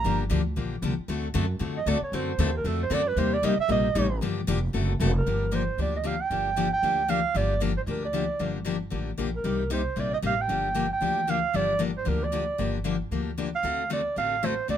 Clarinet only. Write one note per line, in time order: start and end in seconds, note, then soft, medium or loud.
0.00 0.19 A#5 loud
1.77 1.90 D#5 medium
1.88 2.02 D5 loud
2.03 2.16 C#5 medium
2.15 2.55 C5 medium
2.57 2.69 A#4 medium
2.67 2.81 A4 medium
2.83 2.95 C5 medium
2.94 3.09 D5 loud
3.07 3.20 B4 loud
3.18 3.35 C5 medium
3.33 3.46 D5 loud
3.45 3.59 D#5 medium
3.60 3.70 E5 loud
3.72 4.19 D#5 medium
5.17 5.56 A#4 medium
5.55 5.79 C5 medium
5.81 5.94 D5 medium
5.96 6.08 D#5 medium
6.06 6.22 F5 loud
6.21 6.72 G5 loud
6.73 7.11 G5 loud
7.10 7.38 F5 loud
7.37 7.62 D5 medium
7.77 7.82 C5 medium
7.90 8.02 A#4 medium
8.05 8.52 D5 medium
9.36 9.69 A#4 medium
9.73 10.01 C5 medium
9.99 10.13 D5 medium
10.14 10.18 D#5 medium
10.26 10.43 F5 loud
10.41 10.92 G5 medium
10.93 11.31 G5 medium
11.30 11.57 F5 loud
11.56 11.81 D5 medium
11.97 12.10 C5 medium
12.08 12.25 A#4 medium
12.24 12.75 D5 medium
13.55 13.89 F5 medium
13.93 14.16 D5 medium
14.17 14.46 F5 loud
14.45 14.70 C5 loud
14.70 14.78 D5 medium